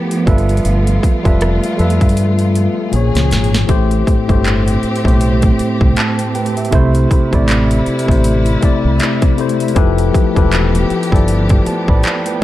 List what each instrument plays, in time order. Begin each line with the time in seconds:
Already playing: tine electric piano F3 E4 G4 A4 A#4 B4, string section F3 A3 B3 G4
0.11 closed hi-hat
0.25 fingered electric bass G1, tine electric piano G3 F4 A4 B4 E5, string section A3 F4, kick, closed hi-hat
0.38 closed hi-hat
0.49 closed hi-hat
0.57 closed hi-hat
0.65 fingered electric bass G1, closed hi-hat
0.87 closed hi-hat
1.03 kick, closed hi-hat
1.23 fingered electric bass F1, tine electric piano G3 F4 A4 B4 E5, kick, closed hi-hat
1.41 cross-stick, closed hi-hat
1.64 closed hi-hat
1.77 fingered electric bass F2, tine electric piano G3 F4 A4 B4 E5, closed hi-hat
1.90 closed hi-hat
2.01 fingered electric bass G2, kick, closed hi-hat
2.09 closed hi-hat
2.17 closed hi-hat
2.39 closed hi-hat
2.55 closed hi-hat
2.91 fingered electric bass A#1, tine electric piano A#2 F3 G#4, string section C#3 A#3 G#4, closed hi-hat
2.96 tine electric piano C#5
3.15 fingered electric bass C#2, snare, closed hi-hat
3.31 fingered electric bass G#1, snare, closed hi-hat
3.44 closed hi-hat
3.55 snare, closed hi-hat
3.67 fingered electric bass A1, tine electric piano A2 A3 G4 C5, string section A3 C4 G4, kick, closed hi-hat
3.91 closed hi-hat
4.07 kick, closed hi-hat
4.28 fingered electric bass G1, tine electric piano A2 A3 G4 C5, kick, closed hi-hat
4.45 clap, closed hi-hat
4.68 closed hi-hat
4.83 muted fingered electric bass stroke, closed hi-hat
4.96 closed hi-hat
5.04 fingered electric bass B1, tine electric piano A2 A3 G4 C5, kick
5.08 closed hi-hat
5.21 closed hi-hat
5.42 kick, closed hi-hat
5.59 muted fingered electric bass stroke, closed hi-hat
5.81 fingered electric bass C2, kick
5.96 tine electric piano C5 A5, clap, closed hi-hat
6.19 closed hi-hat
6.35 tine electric piano B4 G5, closed hi-hat
6.46 closed hi-hat
6.57 tine electric piano G4 E5, closed hi-hat
6.65 closed hi-hat
6.71 fingered electric bass C2, tine electric piano C3 A3 E4 C5, string section C3 E4, kick, closed hi-hat
6.95 closed hi-hat
7.11 kick, closed hi-hat
7.31 fingered electric bass A1, tine electric piano C3 A3 E4 D5, kick, closed hi-hat
7.48 clap, closed hi-hat
7.71 closed hi-hat
7.86 muted fingered electric bass stroke, closed hi-hat
7.99 closed hi-hat
8.07 fingered electric bass A1, tine electric piano C3 A3 E4 C5, kick
8.11 closed hi-hat
8.24 closed hi-hat
8.46 closed hi-hat
8.61 tine electric piano C3 A3 E4 D5, muted fingered electric bass stroke, kick, closed hi-hat
8.85 fingered electric bass C2
9.00 clap, closed hi-hat
9.22 kick, closed hi-hat
9.37 tine electric piano C3 A3 E4 C5, closed hi-hat
9.49 closed hi-hat
9.60 closed hi-hat
9.68 closed hi-hat
9.75 fingered electric bass F1, tine electric piano F3 E4 G4 A4 B4, string section F3 B3 G4, kick, closed hi-hat
9.98 closed hi-hat
10.14 kick, closed hi-hat
10.34 fingered electric bass E1, tine electric piano F3 E4 G4 A4 B4, kick, closed hi-hat
10.52 clap, closed hi-hat
10.75 closed hi-hat
10.90 muted fingered electric bass stroke, closed hi-hat
11.03 closed hi-hat
11.10 fingered electric bass G1, tine electric piano F3 E4 G4 A4 D5, kick
11.16 closed hi-hat
11.28 closed hi-hat
11.49 tine electric piano B4 G5, kick, closed hi-hat
11.66 tine electric piano C5 A5, muted fingered electric bass stroke, closed hi-hat
11.88 fingered electric bass A1, tine electric piano D5 B5, kick
12.03 clap, closed hi-hat
12.26 tine electric piano B4 G5, closed hi-hat